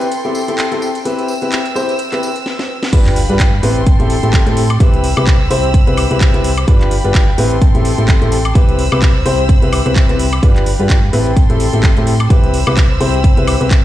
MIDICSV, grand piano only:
0, 0, Header, 1, 2, 480
1, 0, Start_track
1, 0, Key_signature, 0, "major"
1, 0, Tempo, 468750
1, 1078, Time_signature, 4, 2, 24, 8
1, 14178, End_track
2, 0, Start_track
2, 0, Title_t, "Grand piano"
2, 0, Program_c, 0, 0
2, 254, Note_on_c, 0, 60, 77
2, 254, Note_on_c, 0, 64, 69
2, 254, Note_on_c, 0, 67, 71
2, 254, Note_on_c, 0, 69, 82
2, 404, Note_off_c, 0, 60, 0
2, 404, Note_off_c, 0, 64, 0
2, 404, Note_off_c, 0, 67, 0
2, 404, Note_off_c, 0, 69, 0
2, 494, Note_on_c, 0, 60, 73
2, 494, Note_on_c, 0, 64, 68
2, 494, Note_on_c, 0, 67, 69
2, 494, Note_on_c, 0, 69, 86
2, 644, Note_off_c, 0, 60, 0
2, 644, Note_off_c, 0, 67, 0
2, 644, Note_off_c, 0, 69, 0
2, 645, Note_off_c, 0, 64, 0
2, 734, Note_on_c, 0, 60, 73
2, 734, Note_on_c, 0, 64, 71
2, 734, Note_on_c, 0, 67, 73
2, 734, Note_on_c, 0, 69, 88
2, 884, Note_off_c, 0, 60, 0
2, 884, Note_off_c, 0, 64, 0
2, 884, Note_off_c, 0, 67, 0
2, 884, Note_off_c, 0, 69, 0
2, 1077, Note_on_c, 0, 64, 72
2, 1077, Note_on_c, 0, 71, 86
2, 1078, Note_on_c, 0, 60, 76
2, 1078, Note_on_c, 0, 67, 70
2, 1337, Note_off_c, 0, 64, 0
2, 1337, Note_off_c, 0, 71, 0
2, 1338, Note_off_c, 0, 60, 0
2, 1338, Note_off_c, 0, 67, 0
2, 1454, Note_on_c, 0, 60, 69
2, 1454, Note_on_c, 0, 64, 68
2, 1454, Note_on_c, 0, 67, 65
2, 1454, Note_on_c, 0, 71, 75
2, 1604, Note_off_c, 0, 60, 0
2, 1604, Note_off_c, 0, 64, 0
2, 1604, Note_off_c, 0, 67, 0
2, 1604, Note_off_c, 0, 71, 0
2, 1797, Note_on_c, 0, 60, 83
2, 1797, Note_on_c, 0, 64, 82
2, 1797, Note_on_c, 0, 67, 78
2, 1798, Note_on_c, 0, 72, 99
2, 1969, Note_off_c, 0, 60, 0
2, 1969, Note_off_c, 0, 64, 0
2, 1969, Note_off_c, 0, 67, 0
2, 1969, Note_off_c, 0, 72, 0
2, 2174, Note_on_c, 0, 60, 80
2, 2174, Note_on_c, 0, 64, 66
2, 2174, Note_on_c, 0, 67, 72
2, 2174, Note_on_c, 0, 71, 86
2, 2324, Note_off_c, 0, 60, 0
2, 2324, Note_off_c, 0, 64, 0
2, 2324, Note_off_c, 0, 67, 0
2, 2324, Note_off_c, 0, 71, 0
2, 2998, Note_on_c, 0, 71, 96
2, 2999, Note_on_c, 0, 62, 85
2, 2999, Note_on_c, 0, 65, 78
2, 2999, Note_on_c, 0, 67, 79
2, 3258, Note_off_c, 0, 62, 0
2, 3258, Note_off_c, 0, 65, 0
2, 3258, Note_off_c, 0, 67, 0
2, 3258, Note_off_c, 0, 71, 0
2, 3374, Note_on_c, 0, 62, 77
2, 3374, Note_on_c, 0, 65, 69
2, 3374, Note_on_c, 0, 67, 73
2, 3374, Note_on_c, 0, 71, 91
2, 3524, Note_off_c, 0, 67, 0
2, 3525, Note_off_c, 0, 62, 0
2, 3525, Note_off_c, 0, 65, 0
2, 3525, Note_off_c, 0, 71, 0
2, 3718, Note_on_c, 0, 60, 100
2, 3718, Note_on_c, 0, 64, 86
2, 3718, Note_on_c, 0, 67, 88
2, 3718, Note_on_c, 0, 71, 109
2, 3889, Note_off_c, 0, 60, 0
2, 3889, Note_off_c, 0, 64, 0
2, 3889, Note_off_c, 0, 67, 0
2, 3889, Note_off_c, 0, 71, 0
2, 4094, Note_on_c, 0, 60, 83
2, 4094, Note_on_c, 0, 64, 74
2, 4094, Note_on_c, 0, 67, 79
2, 4094, Note_on_c, 0, 69, 93
2, 4244, Note_off_c, 0, 60, 0
2, 4244, Note_off_c, 0, 64, 0
2, 4244, Note_off_c, 0, 67, 0
2, 4244, Note_off_c, 0, 69, 0
2, 4334, Note_on_c, 0, 60, 78
2, 4334, Note_on_c, 0, 64, 73
2, 4334, Note_on_c, 0, 67, 74
2, 4334, Note_on_c, 0, 69, 90
2, 4484, Note_off_c, 0, 60, 0
2, 4484, Note_off_c, 0, 64, 0
2, 4484, Note_off_c, 0, 67, 0
2, 4484, Note_off_c, 0, 69, 0
2, 4574, Note_on_c, 0, 60, 84
2, 4574, Note_on_c, 0, 64, 75
2, 4574, Note_on_c, 0, 67, 77
2, 4574, Note_on_c, 0, 69, 89
2, 4724, Note_off_c, 0, 60, 0
2, 4724, Note_off_c, 0, 64, 0
2, 4724, Note_off_c, 0, 67, 0
2, 4724, Note_off_c, 0, 69, 0
2, 4918, Note_on_c, 0, 60, 84
2, 4918, Note_on_c, 0, 64, 78
2, 4918, Note_on_c, 0, 67, 79
2, 4918, Note_on_c, 0, 71, 95
2, 5178, Note_off_c, 0, 60, 0
2, 5178, Note_off_c, 0, 64, 0
2, 5178, Note_off_c, 0, 67, 0
2, 5178, Note_off_c, 0, 71, 0
2, 5294, Note_on_c, 0, 60, 75
2, 5294, Note_on_c, 0, 64, 73
2, 5294, Note_on_c, 0, 67, 72
2, 5294, Note_on_c, 0, 71, 85
2, 5444, Note_off_c, 0, 60, 0
2, 5444, Note_off_c, 0, 64, 0
2, 5444, Note_off_c, 0, 67, 0
2, 5444, Note_off_c, 0, 71, 0
2, 5638, Note_on_c, 0, 60, 95
2, 5638, Note_on_c, 0, 64, 91
2, 5638, Note_on_c, 0, 67, 87
2, 5638, Note_on_c, 0, 72, 105
2, 5809, Note_off_c, 0, 64, 0
2, 5809, Note_off_c, 0, 67, 0
2, 5809, Note_off_c, 0, 72, 0
2, 5810, Note_off_c, 0, 60, 0
2, 6013, Note_on_c, 0, 71, 93
2, 6014, Note_on_c, 0, 60, 81
2, 6014, Note_on_c, 0, 64, 75
2, 6014, Note_on_c, 0, 67, 77
2, 6164, Note_off_c, 0, 60, 0
2, 6164, Note_off_c, 0, 64, 0
2, 6164, Note_off_c, 0, 67, 0
2, 6164, Note_off_c, 0, 71, 0
2, 6254, Note_on_c, 0, 60, 80
2, 6254, Note_on_c, 0, 64, 77
2, 6254, Note_on_c, 0, 67, 74
2, 6254, Note_on_c, 0, 71, 92
2, 6404, Note_off_c, 0, 60, 0
2, 6404, Note_off_c, 0, 64, 0
2, 6404, Note_off_c, 0, 67, 0
2, 6404, Note_off_c, 0, 71, 0
2, 6494, Note_on_c, 0, 60, 83
2, 6494, Note_on_c, 0, 64, 77
2, 6494, Note_on_c, 0, 67, 79
2, 6494, Note_on_c, 0, 71, 88
2, 6644, Note_off_c, 0, 60, 0
2, 6644, Note_off_c, 0, 64, 0
2, 6644, Note_off_c, 0, 67, 0
2, 6644, Note_off_c, 0, 71, 0
2, 6838, Note_on_c, 0, 62, 84
2, 6838, Note_on_c, 0, 65, 82
2, 6838, Note_on_c, 0, 67, 78
2, 6838, Note_on_c, 0, 71, 96
2, 7098, Note_off_c, 0, 62, 0
2, 7098, Note_off_c, 0, 65, 0
2, 7098, Note_off_c, 0, 67, 0
2, 7098, Note_off_c, 0, 71, 0
2, 7214, Note_on_c, 0, 62, 77
2, 7214, Note_on_c, 0, 65, 71
2, 7214, Note_on_c, 0, 67, 71
2, 7214, Note_on_c, 0, 71, 89
2, 7364, Note_off_c, 0, 65, 0
2, 7364, Note_off_c, 0, 67, 0
2, 7364, Note_off_c, 0, 71, 0
2, 7365, Note_off_c, 0, 62, 0
2, 7558, Note_on_c, 0, 60, 97
2, 7558, Note_on_c, 0, 64, 87
2, 7558, Note_on_c, 0, 67, 87
2, 7558, Note_on_c, 0, 71, 106
2, 7729, Note_off_c, 0, 60, 0
2, 7729, Note_off_c, 0, 64, 0
2, 7729, Note_off_c, 0, 67, 0
2, 7729, Note_off_c, 0, 71, 0
2, 7934, Note_on_c, 0, 60, 84
2, 7934, Note_on_c, 0, 64, 76
2, 7934, Note_on_c, 0, 69, 87
2, 7935, Note_on_c, 0, 67, 74
2, 8084, Note_off_c, 0, 64, 0
2, 8084, Note_off_c, 0, 69, 0
2, 8085, Note_off_c, 0, 60, 0
2, 8085, Note_off_c, 0, 67, 0
2, 8174, Note_on_c, 0, 60, 81
2, 8174, Note_on_c, 0, 67, 76
2, 8175, Note_on_c, 0, 64, 78
2, 8175, Note_on_c, 0, 69, 88
2, 8325, Note_off_c, 0, 60, 0
2, 8325, Note_off_c, 0, 64, 0
2, 8325, Note_off_c, 0, 67, 0
2, 8325, Note_off_c, 0, 69, 0
2, 8414, Note_on_c, 0, 60, 79
2, 8414, Note_on_c, 0, 64, 74
2, 8414, Note_on_c, 0, 67, 81
2, 8415, Note_on_c, 0, 69, 92
2, 8565, Note_off_c, 0, 60, 0
2, 8565, Note_off_c, 0, 64, 0
2, 8565, Note_off_c, 0, 67, 0
2, 8565, Note_off_c, 0, 69, 0
2, 8758, Note_on_c, 0, 71, 98
2, 8759, Note_on_c, 0, 60, 83
2, 8759, Note_on_c, 0, 64, 78
2, 8759, Note_on_c, 0, 67, 78
2, 9018, Note_off_c, 0, 60, 0
2, 9018, Note_off_c, 0, 64, 0
2, 9018, Note_off_c, 0, 67, 0
2, 9018, Note_off_c, 0, 71, 0
2, 9134, Note_on_c, 0, 60, 74
2, 9134, Note_on_c, 0, 64, 71
2, 9134, Note_on_c, 0, 67, 70
2, 9134, Note_on_c, 0, 71, 91
2, 9284, Note_off_c, 0, 64, 0
2, 9284, Note_off_c, 0, 67, 0
2, 9285, Note_off_c, 0, 60, 0
2, 9285, Note_off_c, 0, 71, 0
2, 9479, Note_on_c, 0, 60, 99
2, 9479, Note_on_c, 0, 64, 89
2, 9479, Note_on_c, 0, 67, 83
2, 9479, Note_on_c, 0, 72, 109
2, 9650, Note_off_c, 0, 60, 0
2, 9650, Note_off_c, 0, 64, 0
2, 9650, Note_off_c, 0, 67, 0
2, 9650, Note_off_c, 0, 72, 0
2, 9854, Note_on_c, 0, 60, 80
2, 9854, Note_on_c, 0, 64, 75
2, 9854, Note_on_c, 0, 67, 74
2, 9854, Note_on_c, 0, 71, 91
2, 10004, Note_off_c, 0, 64, 0
2, 10004, Note_off_c, 0, 67, 0
2, 10004, Note_off_c, 0, 71, 0
2, 10005, Note_off_c, 0, 60, 0
2, 10094, Note_on_c, 0, 60, 83
2, 10094, Note_on_c, 0, 64, 74
2, 10094, Note_on_c, 0, 67, 75
2, 10094, Note_on_c, 0, 71, 86
2, 10244, Note_off_c, 0, 60, 0
2, 10244, Note_off_c, 0, 64, 0
2, 10244, Note_off_c, 0, 67, 0
2, 10244, Note_off_c, 0, 71, 0
2, 10334, Note_on_c, 0, 60, 84
2, 10334, Note_on_c, 0, 64, 77
2, 10334, Note_on_c, 0, 67, 77
2, 10334, Note_on_c, 0, 71, 89
2, 10484, Note_off_c, 0, 60, 0
2, 10484, Note_off_c, 0, 64, 0
2, 10484, Note_off_c, 0, 67, 0
2, 10484, Note_off_c, 0, 71, 0
2, 10678, Note_on_c, 0, 62, 81
2, 10678, Note_on_c, 0, 65, 75
2, 10678, Note_on_c, 0, 67, 79
2, 10678, Note_on_c, 0, 71, 93
2, 10938, Note_off_c, 0, 62, 0
2, 10938, Note_off_c, 0, 65, 0
2, 10938, Note_off_c, 0, 67, 0
2, 10938, Note_off_c, 0, 71, 0
2, 11054, Note_on_c, 0, 62, 77
2, 11054, Note_on_c, 0, 65, 71
2, 11054, Note_on_c, 0, 67, 74
2, 11054, Note_on_c, 0, 71, 85
2, 11205, Note_off_c, 0, 62, 0
2, 11205, Note_off_c, 0, 65, 0
2, 11205, Note_off_c, 0, 67, 0
2, 11205, Note_off_c, 0, 71, 0
2, 11398, Note_on_c, 0, 60, 96
2, 11398, Note_on_c, 0, 67, 91
2, 11399, Note_on_c, 0, 64, 86
2, 11399, Note_on_c, 0, 71, 102
2, 11569, Note_off_c, 0, 67, 0
2, 11570, Note_off_c, 0, 60, 0
2, 11570, Note_off_c, 0, 64, 0
2, 11570, Note_off_c, 0, 71, 0
2, 11774, Note_on_c, 0, 60, 83
2, 11774, Note_on_c, 0, 64, 75
2, 11774, Note_on_c, 0, 67, 76
2, 11774, Note_on_c, 0, 69, 94
2, 11924, Note_off_c, 0, 60, 0
2, 11924, Note_off_c, 0, 64, 0
2, 11924, Note_off_c, 0, 67, 0
2, 11924, Note_off_c, 0, 69, 0
2, 12014, Note_on_c, 0, 60, 78
2, 12014, Note_on_c, 0, 64, 75
2, 12014, Note_on_c, 0, 67, 75
2, 12014, Note_on_c, 0, 69, 90
2, 12164, Note_off_c, 0, 60, 0
2, 12164, Note_off_c, 0, 64, 0
2, 12164, Note_off_c, 0, 67, 0
2, 12164, Note_off_c, 0, 69, 0
2, 12254, Note_on_c, 0, 67, 80
2, 12254, Note_on_c, 0, 69, 88
2, 12255, Note_on_c, 0, 60, 82
2, 12255, Note_on_c, 0, 64, 75
2, 12404, Note_off_c, 0, 69, 0
2, 12405, Note_off_c, 0, 60, 0
2, 12405, Note_off_c, 0, 64, 0
2, 12405, Note_off_c, 0, 67, 0
2, 12598, Note_on_c, 0, 64, 77
2, 12598, Note_on_c, 0, 67, 81
2, 12598, Note_on_c, 0, 71, 102
2, 12599, Note_on_c, 0, 60, 90
2, 12858, Note_off_c, 0, 60, 0
2, 12858, Note_off_c, 0, 64, 0
2, 12858, Note_off_c, 0, 67, 0
2, 12858, Note_off_c, 0, 71, 0
2, 12973, Note_on_c, 0, 71, 90
2, 12974, Note_on_c, 0, 60, 77
2, 12974, Note_on_c, 0, 64, 70
2, 12974, Note_on_c, 0, 67, 73
2, 13124, Note_off_c, 0, 60, 0
2, 13124, Note_off_c, 0, 64, 0
2, 13124, Note_off_c, 0, 67, 0
2, 13124, Note_off_c, 0, 71, 0
2, 13317, Note_on_c, 0, 60, 93
2, 13317, Note_on_c, 0, 72, 109
2, 13318, Note_on_c, 0, 64, 86
2, 13318, Note_on_c, 0, 67, 94
2, 13489, Note_off_c, 0, 60, 0
2, 13489, Note_off_c, 0, 64, 0
2, 13489, Note_off_c, 0, 67, 0
2, 13489, Note_off_c, 0, 72, 0
2, 13694, Note_on_c, 0, 60, 83
2, 13694, Note_on_c, 0, 64, 79
2, 13694, Note_on_c, 0, 67, 76
2, 13694, Note_on_c, 0, 71, 92
2, 13844, Note_off_c, 0, 60, 0
2, 13844, Note_off_c, 0, 64, 0
2, 13844, Note_off_c, 0, 67, 0
2, 13844, Note_off_c, 0, 71, 0
2, 13933, Note_on_c, 0, 60, 80
2, 13933, Note_on_c, 0, 64, 76
2, 13933, Note_on_c, 0, 67, 74
2, 13933, Note_on_c, 0, 71, 90
2, 14084, Note_off_c, 0, 60, 0
2, 14084, Note_off_c, 0, 64, 0
2, 14084, Note_off_c, 0, 67, 0
2, 14084, Note_off_c, 0, 71, 0
2, 14178, End_track
0, 0, End_of_file